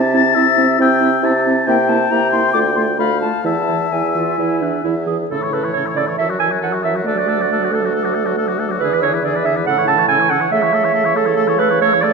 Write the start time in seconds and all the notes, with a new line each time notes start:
Already playing: C3 A5
0.14 C4 E4 A6
0.35 C3 C4 E4 E5
0.56 C4 E4
0.79 C3 C4 E4 G5 E6
1.00 C4 E4
1.22 C3 C4 E4 A5
1.45 C4 E4
1.67 C3 A#3 E4 G5
1.88 A#3 E4 A5
2.10 C3 A#3 E4 A#5
2.32 A#3 E4 C6
2.53 D2 A3 F4 D6
2.76 A3 F4 C6
2.98 D2 A3 F4 F5 B5
3.21 A3 F4 A5
3.44 E2 E3 E4 E5 A5
3.67 E3 E4
3.91 E2 E3 E4 G#5
4.15 E3 F4
4.37 E2 E3 E4
4.61 E3 D4
4.84 E2 E3 E4
5.06 E3 G#4
5.29 A2 C#3 A4 E6
5.41 E3 C#5 C#6
5.51 C#3 A4 B4 E6
5.63 E3 C#5 C#6
5.74 C#3 A4 C#5 E6
5.85 E3 C#5 C#6
5.96 C#3 A4 D5 E6
6.07 E3 C#5 C#6
6.18 F#2 E3 A4 E5 E6
6.29 F#3 F#4 C#6
6.39 E3 A4 G#5 E6
6.50 F#3 F#4 C#6
6.60 E3 A4 F#5 E6
6.72 F#3 F#4 C#6
6.83 E3 A4 E5 E6
6.94 F#3 F#4 C#6
7.04 D2 A3 A4 D5 F#6
7.15 F#3 F#4 D6
7.27 A3 A4 F#6
7.38 F#3 F#4 D6
7.49 A3 A4 F#6
7.60 F#3 D6
7.65 F#4
7.71 A3 A4 F#6
7.81 F#3 D6
7.85 F#4
7.92 A3 A4 F#6
8.03 F#3 F#4 D6
8.14 A3 A4 F#6
8.24 F#3 F#4 D6
8.35 A3 A4 F#6
8.46 F#3 F#4 D6
8.57 A3 A4 F#6
8.68 F#3 F#4 D6
8.80 E2 D3 G#4 B4 E6
8.90 E3 B4 D6
9.00 D3 C#5 E6
9.05 G#4
9.12 E3 B4 D6
9.23 D3 G#4 D5 E6
9.34 E3 B4 D6
9.44 D3 G#4 E5 E6
9.55 E3 B4 D6
9.66 A2 C#3 A4 F#5 E6
9.77 E3 C#5 C#6
9.86 C#3 A4 A5 E6
9.97 E3 C#5 C#6
10.08 C#3 A4 G#5 E6
10.18 E3 C#5 C#6
10.29 C#3 A4 F#5 E6
10.40 E3 C#5 C#6
10.51 C#3 A3 A4 E5 E6
10.62 E3 C#5 C#6
10.73 A3 A4 E6
10.83 E3 C#5 C#6
10.93 A3 A4 E6
11.05 E3 C#5 C#6
11.15 A3 A4 E6
11.25 E3 C#5 C#6
11.36 A3 A4 E6
11.47 E3 C#5 C#6
11.59 A3 A4 B4 E6
11.70 E3 C#5 C#6
11.81 A3 A4 C#5 E6
11.93 E3 C#5 C#6
12.02 A3 A4 D5 E6